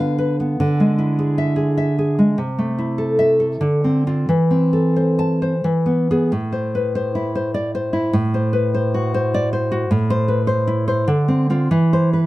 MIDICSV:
0, 0, Header, 1, 2, 480
1, 0, Start_track
1, 0, Key_signature, 0, "minor"
1, 0, Tempo, 599401
1, 482, Time_signature, 3, 2, 24, 8
1, 2391, Tempo, 632911
1, 2871, Tempo, 676437
1, 4791, Tempo, 634921
1, 5271, Tempo, 591133
1, 7191, Tempo, 566038
1, 8151, Tempo, 624350
1, 9541, End_track
2, 0, Start_track
2, 0, Title_t, "Nylon-string guitar"
2, 0, Program_c, 0, 24
2, 0, Note_on_c, 0, 50, 80
2, 0, Note_on_c, 0, 71, 60
2, 0, Note_on_c, 0, 77, 68
2, 138, Note_off_c, 0, 71, 0
2, 148, Note_on_c, 0, 71, 59
2, 316, Note_off_c, 0, 71, 0
2, 319, Note_on_c, 0, 59, 53
2, 446, Note_off_c, 0, 50, 0
2, 480, Note_on_c, 0, 50, 78
2, 481, Note_off_c, 0, 77, 0
2, 482, Note_off_c, 0, 59, 0
2, 641, Note_on_c, 0, 56, 48
2, 789, Note_on_c, 0, 64, 58
2, 950, Note_on_c, 0, 68, 61
2, 1105, Note_on_c, 0, 76, 73
2, 1240, Note_off_c, 0, 68, 0
2, 1249, Note_on_c, 0, 68, 54
2, 1350, Note_off_c, 0, 56, 0
2, 1363, Note_off_c, 0, 76, 0
2, 1421, Note_on_c, 0, 76, 60
2, 1506, Note_off_c, 0, 64, 0
2, 1581, Note_off_c, 0, 68, 0
2, 1590, Note_on_c, 0, 68, 56
2, 1751, Note_on_c, 0, 56, 53
2, 1879, Note_off_c, 0, 50, 0
2, 1905, Note_on_c, 0, 48, 72
2, 1908, Note_off_c, 0, 76, 0
2, 1912, Note_off_c, 0, 56, 0
2, 1912, Note_off_c, 0, 68, 0
2, 2070, Note_on_c, 0, 57, 48
2, 2231, Note_on_c, 0, 64, 51
2, 2387, Note_on_c, 0, 69, 58
2, 2544, Note_on_c, 0, 76, 66
2, 2695, Note_off_c, 0, 69, 0
2, 2704, Note_on_c, 0, 69, 53
2, 2789, Note_off_c, 0, 57, 0
2, 2804, Note_off_c, 0, 76, 0
2, 2840, Note_off_c, 0, 48, 0
2, 2862, Note_on_c, 0, 50, 62
2, 2870, Note_off_c, 0, 69, 0
2, 2872, Note_off_c, 0, 64, 0
2, 3031, Note_on_c, 0, 60, 50
2, 3182, Note_off_c, 0, 60, 0
2, 3190, Note_on_c, 0, 60, 46
2, 3191, Note_on_c, 0, 65, 64
2, 3325, Note_off_c, 0, 50, 0
2, 3330, Note_off_c, 0, 65, 0
2, 3331, Note_off_c, 0, 60, 0
2, 3345, Note_on_c, 0, 52, 67
2, 3501, Note_on_c, 0, 60, 44
2, 3659, Note_on_c, 0, 69, 51
2, 3826, Note_on_c, 0, 72, 51
2, 3984, Note_on_c, 0, 81, 62
2, 4140, Note_off_c, 0, 72, 0
2, 4149, Note_on_c, 0, 72, 49
2, 4226, Note_off_c, 0, 60, 0
2, 4244, Note_off_c, 0, 81, 0
2, 4280, Note_off_c, 0, 52, 0
2, 4307, Note_off_c, 0, 69, 0
2, 4307, Note_on_c, 0, 52, 65
2, 4310, Note_off_c, 0, 72, 0
2, 4460, Note_on_c, 0, 59, 47
2, 4629, Note_off_c, 0, 59, 0
2, 4637, Note_on_c, 0, 68, 64
2, 4638, Note_on_c, 0, 59, 44
2, 4777, Note_off_c, 0, 52, 0
2, 4777, Note_off_c, 0, 59, 0
2, 4777, Note_off_c, 0, 68, 0
2, 4787, Note_on_c, 0, 45, 71
2, 4942, Note_on_c, 0, 72, 50
2, 5112, Note_on_c, 0, 71, 49
2, 5257, Note_off_c, 0, 72, 0
2, 5266, Note_on_c, 0, 72, 61
2, 5427, Note_on_c, 0, 64, 52
2, 5582, Note_off_c, 0, 72, 0
2, 5592, Note_on_c, 0, 72, 55
2, 5742, Note_off_c, 0, 72, 0
2, 5745, Note_on_c, 0, 74, 64
2, 5844, Note_off_c, 0, 71, 0
2, 5908, Note_off_c, 0, 74, 0
2, 5911, Note_on_c, 0, 72, 66
2, 6049, Note_off_c, 0, 64, 0
2, 6059, Note_on_c, 0, 64, 55
2, 6201, Note_off_c, 0, 45, 0
2, 6225, Note_on_c, 0, 45, 82
2, 6226, Note_off_c, 0, 64, 0
2, 6230, Note_off_c, 0, 72, 0
2, 6393, Note_on_c, 0, 72, 58
2, 6546, Note_on_c, 0, 71, 59
2, 6710, Note_off_c, 0, 72, 0
2, 6720, Note_on_c, 0, 72, 63
2, 6883, Note_on_c, 0, 66, 60
2, 7035, Note_off_c, 0, 72, 0
2, 7045, Note_on_c, 0, 72, 71
2, 7208, Note_on_c, 0, 74, 77
2, 7268, Note_off_c, 0, 71, 0
2, 7354, Note_off_c, 0, 72, 0
2, 7361, Note_off_c, 0, 74, 0
2, 7364, Note_on_c, 0, 72, 66
2, 7513, Note_off_c, 0, 66, 0
2, 7523, Note_on_c, 0, 66, 69
2, 7631, Note_off_c, 0, 45, 0
2, 7676, Note_off_c, 0, 66, 0
2, 7676, Note_off_c, 0, 72, 0
2, 7686, Note_on_c, 0, 45, 88
2, 7852, Note_on_c, 0, 72, 87
2, 8004, Note_on_c, 0, 71, 58
2, 8098, Note_off_c, 0, 72, 0
2, 8163, Note_on_c, 0, 72, 63
2, 8319, Note_on_c, 0, 64, 63
2, 8465, Note_off_c, 0, 72, 0
2, 8475, Note_on_c, 0, 72, 68
2, 8597, Note_off_c, 0, 45, 0
2, 8625, Note_off_c, 0, 64, 0
2, 8625, Note_off_c, 0, 71, 0
2, 8625, Note_off_c, 0, 72, 0
2, 8628, Note_on_c, 0, 50, 84
2, 8787, Note_on_c, 0, 60, 60
2, 8943, Note_off_c, 0, 60, 0
2, 8952, Note_on_c, 0, 60, 54
2, 8956, Note_on_c, 0, 65, 71
2, 9091, Note_off_c, 0, 50, 0
2, 9093, Note_off_c, 0, 60, 0
2, 9094, Note_off_c, 0, 65, 0
2, 9114, Note_on_c, 0, 52, 70
2, 9285, Note_on_c, 0, 72, 62
2, 9437, Note_off_c, 0, 72, 0
2, 9440, Note_on_c, 0, 71, 44
2, 9541, Note_off_c, 0, 52, 0
2, 9541, Note_off_c, 0, 71, 0
2, 9541, End_track
0, 0, End_of_file